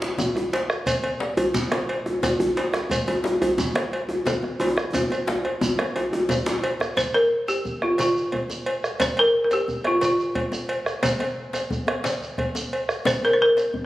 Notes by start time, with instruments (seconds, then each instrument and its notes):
0.01 bombo rim, djembe slap
0.18 bombo low, djembe slap, djembe tone, djembe bass, shekere
0.36 bombo rim, djembe tone
0.53 cowbell, djembe slap
0.70 bombo rim, shekere
0.86 bombo rim, bombo low, cowbell, djembe slap, djembe bass, shekere
1.03 cowbell, djembe tone
1.20 djembe slap
1.37 bombo rim, cowbell, djembe bass
1.54 bombo low, djembe slap, djembe bass, shekere
1.72 bombo rim, cowbell, djembe slap, djembe tone
1.89 cowbell
2.06 bombo rim, djembe slap, djembe tone
2.23 bombo low, cowbell, djembe slap, djembe tone, djembe bass, shekere
2.40 bombo rim, djembe tone, djembe bass
2.57 cowbell, djembe slap
2.73 bombo rim, djembe slap, shekere
2.90 bombo rim, bombo low, cowbell, djembe slap, djembe bass, shekere
3.07 cowbell, djembe tone
3.24 djembe slap, djembe tone
3.42 bombo rim, cowbell, djembe bass
3.58 bombo low, djembe slap, djembe bass, shekere
3.75 bombo rim, cowbell, djembe slap, djembe tone
3.93 cowbell
4.09 bombo rim, djembe slap, djembe tone
4.25 bombo low, cowbell, djembe slap, djembe tone, djembe bass, shekere
4.43 bombo rim, djembe tone
4.60 cowbell, djembe tone
4.68 djembe tone
4.77 bombo rim, djembe slap, shekere
4.93 bombo low, cowbell, djembe tone, djembe bass, shekere
5.10 cowbell, djembe tone, shekere
5.27 bombo rim, djembe slap, djembe tone
5.45 bombo rim, cowbell
5.61 djembe tone, djembe bass, shekere
5.79 bombo rim, cowbell, djembe slap, djembe tone
5.96 bombo rim, cowbell, djembe slap, djembe tone
6.13 bombo rim, djembe tone
6.29 bombo low, cowbell, djembe slap, djembe bass, shekere
6.46 bombo rim, djembe slap, djembe tone, shekere
6.64 cowbell
6.80 bombo rim, djembe slap, shekere
6.97 balafon C5, bombo low, cowbell, djembe slap, djembe bass, shekere
7.14 balafon A#4, bombo rim, cowbell, djembe tone
7.48 balafon G4, cowbell, djembe slap, shekere
7.65 bombo low, djembe slap, djembe bass, shekere
7.82 balafon F4, bombo rim, djembe tone
7.98 balafon F4, bombo rim, cowbell, djembe slap, shekere
8.16 djembe slap, shekere
8.32 bombo rim, bombo low, cowbell, djembe slap, djembe bass
8.50 bombo rim, djembe slap, djembe tone, shekere
8.66 cowbell
8.84 bombo rim, shekere
9.00 balafon C5, bombo low, cowbell, djembe slap, djembe bass, shekere
9.16 balafon A#4, bombo rim, cowbell, djembe tone
9.44 balafon A#4
9.51 balafon G4, cowbell, djembe slap, shekere
9.68 bombo low, djembe slap, djembe bass, shekere
9.84 balafon F4, bombo rim, cowbell, djembe tone
10.01 balafon F4, bombo rim, cowbell, djembe slap, shekere
10.19 djembe slap, shekere
10.35 bombo rim, bombo low, cowbell, djembe slap, djembe bass
10.52 bombo rim, djembe slap, djembe tone, shekere
10.69 cowbell
10.86 bombo rim, shekere
11.03 bombo low, cowbell, djembe slap, djembe bass, shekere
11.19 bombo rim, cowbell, djembe tone
11.53 cowbell, djembe slap, shekere
11.70 bombo low, djembe slap, djembe bass, shekere
11.87 bombo rim, cowbell, djembe tone
12.04 bombo rim, cowbell, djembe slap, shekere
12.23 shekere
12.38 bombo rim, bombo low, cowbell, djembe slap, djembe bass
12.55 bombo rim, djembe slap, djembe tone, shekere
12.73 cowbell
12.89 bombo rim, shekere
13.05 balafon C5, bombo rim, bombo low, cowbell, djembe slap, djembe bass, shekere
13.23 balafon A#4, cowbell, djembe tone
13.33 balafon C5
13.40 balafon A#4, djembe slap
13.57 bombo rim, cowbell, djembe slap, shekere
13.74 bombo low, djembe bass